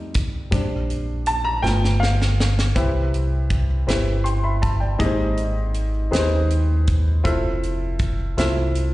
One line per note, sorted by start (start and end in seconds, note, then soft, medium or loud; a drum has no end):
0.00 0.48 F2 loud
0.00 0.48 G3 medium
0.00 0.48 A3 soft
0.00 0.48 D#4 medium
0.00 0.54 C6 medium
0.14 kick medium
0.14 closed hi-hat medium
0.51 1.60 A#1 medium
0.51 1.59 G3 medium
0.51 1.60 C4 soft
0.51 1.60 D4 medium
0.51 kick loud
0.51 closed hi-hat medium
0.90 closed hi-hat soft
1.26 1.46 A5 medium
1.26 closed hi-hat medium
1.45 1.62 A#5 medium
1.62 2.72 G1 medium
1.62 2.13 A3 medium
1.62 2.13 B3 soft
1.62 2.14 F4 medium
1.62 1.98 G5 medium
1.62 snare medium
1.85 snare medium
2.00 2.71 F5 medium
2.00 snare medium
2.22 snare medium
2.40 snare medium
2.59 snare medium
2.75 3.84 C2 medium
2.75 3.84 C3 medium
2.75 3.66 C4 medium
2.75 3.66 E4 medium
2.75 3.66 G4 medium
2.75 3.66 B4 medium
2.75 3.66 E5 medium
2.75 kick medium
2.75 closed hi-hat medium
3.14 closed hi-hat soft
3.50 kick medium
3.50 closed hi-hat soft
3.87 4.96 G1 medium
3.87 4.78 C4 medium
3.87 4.78 E4 medium
3.87 4.78 G4 medium
3.87 4.78 B4 medium
3.87 4.26 E5 medium
3.87 snare medium
3.87 closed hi-hat medium
4.24 4.43 G5 soft
4.24 4.42 C6 medium
4.24 closed hi-hat soft
4.44 4.61 E5 medium
4.44 4.62 B5 medium
4.62 4.80 E5 soft
4.62 4.80 A5 medium
4.62 kick medium
4.62 closed hi-hat soft
4.80 5.17 D5 soft
4.80 5.16 G5 medium
4.99 6.08 G#1 medium
4.99 6.08 G#2 medium
4.99 5.06 A#3 medium
4.99 5.89 D#4 medium
4.99 5.90 G4 medium
4.99 5.90 G#4 medium
4.99 5.90 D#5 medium
4.99 kick loud
4.99 closed hi-hat medium
5.05 5.93 C4 medium
5.37 closed hi-hat soft
5.74 closed hi-hat soft
6.11 7.21 D#2 medium
6.11 7.02 C4 medium
6.11 7.02 D#4 medium
6.11 7.02 G4 medium
6.11 7.02 G#4 medium
6.11 6.19 B4 medium
6.11 snare loud
6.11 closed hi-hat medium
6.19 7.06 C5 medium
6.50 closed hi-hat medium
6.87 kick medium
6.87 closed hi-hat soft
7.24 8.33 F1 medium
7.24 8.14 C4 medium
7.24 8.15 E4 medium
7.24 8.15 F4 medium
7.24 8.15 A4 medium
7.24 8.15 E5 medium
7.24 kick loud
7.24 closed hi-hat medium
7.63 closed hi-hat soft
7.99 kick medium
7.99 closed hi-hat soft
8.37 8.94 C2 medium
8.37 8.94 C4 medium
8.37 8.94 E4 medium
8.37 8.94 F4 medium
8.37 8.94 A4 medium
8.37 8.75 E5 medium
8.37 snare loud
8.37 closed hi-hat medium
8.75 closed hi-hat soft